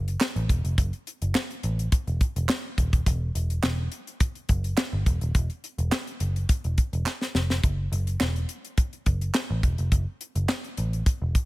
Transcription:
Already playing: picked electric bass F#1
0.08 closed hi-hat
0.20 snare, clap
0.36 picked electric bass A1, closed hi-hat
0.49 picked electric bass E1, kick, closed hi-hat
0.64 picked electric bass F1, closed hi-hat
0.78 picked electric bass F#1, kick, closed hi-hat
0.93 closed hi-hat
1.07 closed hi-hat
1.22 picked electric bass F#1, closed hi-hat
1.35 snare, clap
1.51 closed hi-hat
1.63 picked electric bass A1, closed hi-hat
1.79 closed hi-hat
1.92 kick, closed hi-hat
2.07 picked electric bass E1, closed hi-hat
2.21 kick, closed hi-hat
2.36 picked electric bass E1, closed hi-hat
2.49 snare, clap
2.78 picked electric bass D#1, kick, closed hi-hat
2.93 kick, closed hi-hat
3.06 picked electric bass E1, kick, closed hi-hat
3.35 picked electric bass E1, closed hi-hat
3.50 closed hi-hat
3.63 picked electric bass E1, snare, clap
3.92 closed hi-hat
4.07 closed hi-hat
4.20 kick, closed hi-hat
4.35 closed hi-hat
4.49 picked electric bass F#1, kick, closed hi-hat
4.64 closed hi-hat
4.77 snare, clap
4.93 picked electric bass G1
5.06 picked electric bass E1, kick, closed hi-hat
5.21 picked electric bass D#1, closed hi-hat
5.35 picked electric bass E1, kick, closed hi-hat
5.50 closed hi-hat
5.64 closed hi-hat
5.78 picked electric bass E1, closed hi-hat
5.92 snare, clap
6.07 closed hi-hat
6.20 picked electric bass F#1, closed hi-hat
6.36 closed hi-hat
6.49 kick, closed hi-hat
6.64 picked electric bass E1, closed hi-hat
6.78 kick, closed hi-hat
6.93 picked electric bass E1, closed hi-hat
7.06 snare, clap
7.21 snare
7.35 picked electric bass F1, snare
7.50 snare
7.63 picked electric bass F#1, kick, closed hi-hat
7.92 picked electric bass F#1, closed hi-hat
8.07 closed hi-hat
8.20 picked electric bass E1, snare, clap
8.36 closed hi-hat
8.49 closed hi-hat
8.65 closed hi-hat
8.78 kick, closed hi-hat
8.93 closed hi-hat
9.06 picked electric bass F#1, kick, closed hi-hat
9.21 closed hi-hat
9.34 snare, clap
9.50 picked electric bass A1
9.63 picked electric bass E1, kick, closed hi-hat
9.78 picked electric bass F1, closed hi-hat
9.92 picked electric bass F#1, kick, closed hi-hat
10.21 closed hi-hat
10.35 picked electric bass F#1, closed hi-hat
10.49 snare, clap
10.64 closed hi-hat
10.77 picked electric bass A1, closed hi-hat
10.93 closed hi-hat
11.06 kick, closed hi-hat
11.22 picked electric bass E1
11.35 kick, closed hi-hat

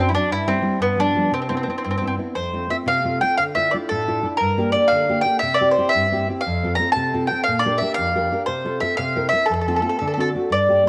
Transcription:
Already playing: nylon-string guitar F#2 F#3
0.00 nylon-string guitar C4 D4
0.09 mandolin E4
0.13 nylon-string guitar F#3 C4 D4, mandolin D4
0.30 nylon-string guitar G2, mandolin E4
0.47 nylon-string guitar G3 C4 E4, mandolin C4
0.62 nylon-string guitar G3 C4 E4
0.80 nylon-string guitar G2, mandolin B3
0.96 nylon-string guitar F3 G3 B3, mandolin D4
1.15 nylon-string guitar F3 G3 B3
1.31 nylon-string guitar C3, mandolin C4
1.42 mandolin C4
1.49 nylon-string guitar B3 C4 E4, mandolin C4
1.57 mandolin C4
1.63 nylon-string guitar B3, mandolin C4
1.68 nylon-string guitar C4 E4, mandolin C4
1.78 mandolin C4
1.84 nylon-string guitar G2, mandolin C4
1.91 mandolin C4
1.98 mandolin C4, nylon-string guitar C4
2.02 nylon-string guitar B3 E4
2.07 mandolin C4
2.18 nylon-string guitar B3 C4 E4
2.35 nylon-string guitar F2, mandolin C5
2.53 nylon-string guitar A3 C4 F4
2.69 nylon-string guitar A3 C4 F4, mandolin E5
2.86 nylon-string guitar C3, mandolin F5
3.04 nylon-string guitar A3 C4 F4
3.21 nylon-string guitar A3 C4 F4, mandolin G5
3.37 nylon-string guitar D3, mandolin F5
3.55 nylon-string guitar D4 E4 F4, mandolin E5
3.71 nylon-string guitar D4 E4 F4, mandolin D5
3.89 nylon-string guitar A2, mandolin A4
4.08 nylon-string guitar D4 E4 F4
4.23 nylon-string guitar D4 E4 F4
4.37 nylon-string guitar G2, mandolin A#4
4.57 nylon-string guitar A#3 D4 G4
4.72 nylon-string guitar A#3 D4 G4, mandolin D5
4.88 mandolin F5
4.92 nylon-string guitar D3
5.09 nylon-string guitar A#3 D4 G4
5.21 nylon-string guitar A#3 D4, mandolin G5
5.25 nylon-string guitar G4
5.39 nylon-string guitar C3, mandolin E5
5.54 mandolin D5
5.61 nylon-string guitar C4 E4 G4
5.71 mandolin C5
5.78 nylon-string guitar C4 E4 G4
5.89 mandolin E5
5.95 nylon-string guitar G2
6.12 nylon-string guitar C4 E4 G4
6.29 nylon-string guitar C4 E4 G4
6.41 mandolin F5
6.46 nylon-string guitar F2
6.63 nylon-string guitar C4 F4 A4
6.75 nylon-string guitar C4, mandolin A#5
6.80 nylon-string guitar F4 A4
6.92 nylon-string guitar C3, mandolin A5
7.14 nylon-string guitar C4 F4 A4
7.27 mandolin G5
7.32 nylon-string guitar C4 F4 A4
7.44 mandolin F5
7.48 nylon-string guitar A#2
7.59 mandolin D5
7.66 nylon-string guitar D4 G4 A#4
7.78 nylon-string guitar D4, mandolin E5
7.82 nylon-string guitar G4 A#4
7.94 nylon-string guitar F2, mandolin F5
8.15 nylon-string guitar D4 G4 A#4
8.32 nylon-string guitar D4 G4 A#4
8.46 nylon-string guitar C3, mandolin C5
8.65 nylon-string guitar C4 F4 A4
8.81 nylon-string guitar C4 F4 A4, mandolin E5
8.97 nylon-string guitar C3, mandolin F5
9.16 nylon-string guitar C4 E4 A#4
9.29 nylon-string guitar C4, mandolin E5
9.33 nylon-string guitar E4 A#4
9.46 nylon-string guitar F2, mandolin A4
9.54 mandolin A4
9.61 mandolin A4
9.67 nylon-string guitar A3 C4 F4, mandolin A4
9.76 mandolin A4
9.82 nylon-string guitar A3 C4 F4, mandolin A4
9.89 mandolin A4
9.99 nylon-string guitar D3, mandolin A4
10.07 mandolin A4
10.14 nylon-string guitar C4, mandolin A4
10.18 nylon-string guitar D4 F#4, mandolin A4
10.35 nylon-string guitar C4 D4 F#4
10.50 nylon-string guitar G2, mandolin D5
10.68 nylon-string guitar A3 D4 G4
10.85 nylon-string guitar A3

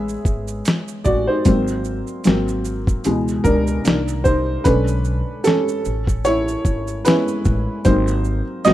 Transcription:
Already playing: upright bass A1, upright piano G#3 B3 C#4 G#4 E5
0.09 shaker
0.25 upright bass G#1, kick, shaker
0.48 shaker
0.65 snare, closed hi-hat, shaker
0.88 shaker
1.05 upright bass A1, upright piano F#4 D5, kick, shaker
1.27 upright piano D#4 C5
1.45 upright bass G#1, upright piano F#3 A#3 C4, kick, closed hi-hat, shaker
1.68 shaker
1.85 shaker
2.07 shaker
2.24 upright bass G#1, upright piano F#3 A#3 C4, snare, closed hi-hat, shaker
2.48 shaker
2.65 shaker
2.87 kick, shaker
3.04 upright bass C#2, upright piano B2 E3 G#3, closed hi-hat, shaker
3.28 shaker
3.44 upright bass C#2, upright piano D4 A#4, kick, shaker
3.67 shaker
3.84 upright bass C2, upright piano D#3 A#3 D4, snare, closed hi-hat, shaker
4.08 shaker
4.24 upright piano D#4 C5, kick, shaker
4.64 upright bass B1, upright piano D3 A3 C#4 D4 B4, kick, closed hi-hat, shaker
4.88 shaker
5.05 shaker
5.44 upright piano C#4 A4, snare, closed hi-hat, shaker
5.68 shaker
5.85 upright bass A1, shaker
6.07 kick, shaker
6.25 upright piano E4 C#5, closed hi-hat, shaker
6.48 shaker
6.65 upright bass G#1, kick, shaker
6.88 shaker
7.05 upright piano G#3 B3 C#4 E4 B4, snare, closed hi-hat, shaker
7.28 shaker
7.45 upright bass A1, kick, shaker
7.85 upright bass G#1, upright piano F#3 A#3 C4 D#4 C5, kick, closed hi-hat, shaker
8.08 shaker
8.25 shaker
8.65 upright bass G#1, upright piano F#3 A#3 C4 F#4 D#5, snare, closed hi-hat, shaker

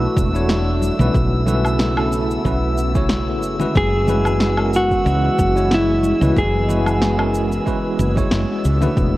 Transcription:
Already playing: string machine E3 A3 D4 F#4, tine electric piano A3 D4 E4 F#4 B4, synth texture E6
0.17 fretless electric bass E1, kick, cabasa
0.33 tine electric piano A3 D4 E4 F#4 C#5, cabasa
0.49 snare, cabasa
0.82 high conga, cabasa
0.99 fretless electric bass B1, tine electric piano A3 C#4 E4 F#4 B4, high conga, low conga, cabasa
1.15 fretless electric bass B1, string machine C#3 B3 E4, kick, cabasa
1.46 tine electric piano A3 C#4 E4 F#4 B4, high conga, low conga, cabasa
1.65 cabasa, low woodblock
1.79 snare, cabasa
1.97 tine electric piano A3 C#4 E4 F#4 A4, low woodblock
2.13 cabasa
2.31 cabasa
2.44 fretless electric bass B1, tine electric piano A3 C#4 E4 F#4 B4, kick, cabasa
2.78 cabasa
2.94 tine electric piano A3 C#4 E4 F#4 C#5, kick, cabasa
3.09 snare, cabasa
3.42 fretless electric bass F#1, cabasa
3.59 tine electric piano G#3 C#4 E4 F#4 B4, low conga, cabasa
3.75 fretless electric bass F#1, string machine E3 G#3 B3 F#4, clean electric guitar G#4, kick, cabasa
4.07 tine electric piano G#3 C#4 E4 F#4 B4, high conga, low conga, cabasa
4.25 cabasa, low woodblock
4.40 snare, cabasa
4.57 tine electric piano G#3 C#4 E4 F#4 A#4, low woodblock
4.73 clean electric guitar F#4, cabasa
4.91 kick, cabasa
5.04 fretless electric bass C#2, tine electric piano G#3 C#4 E4 F#4 B4, cabasa
5.39 fretless electric bass F#1, kick, cabasa
5.54 tine electric piano G#3 C#4 E4 F#4 C#5, cabasa
5.71 clean electric guitar E4, snare, cabasa
6.03 high conga, cabasa
6.20 fretless electric bass C#2, tine electric piano G#3 C#4 E4 F#4 B4, high conga, low conga, cabasa
6.36 fretless electric bass F#1, string machine G#4, clean electric guitar G#4, kick, cabasa
6.67 tine electric piano G#3 C#4 E4 F#4 B4, high conga, low conga, cabasa
6.86 cabasa, low woodblock
7.02 snare, cabasa
7.17 tine electric piano G#3 C#4 E4 F#4 A#4, low woodblock
7.34 cabasa
7.52 cabasa
7.65 tine electric piano G#3 C#4 E4 F#4 B4, kick, cabasa
7.99 fretless electric bass F#1, cabasa
8.16 tine electric piano G#3 C#4 E4 F#4 C#5, kick, cabasa
8.31 fretless electric bass F#1, snare, cabasa
8.65 fretless electric bass C#2, cabasa
8.81 tine electric piano A3 D4 E4 F#4 B4, low conga, cabasa
8.97 fretless electric bass E1, string machine D3 E3 F#3 E4, kick, cabasa

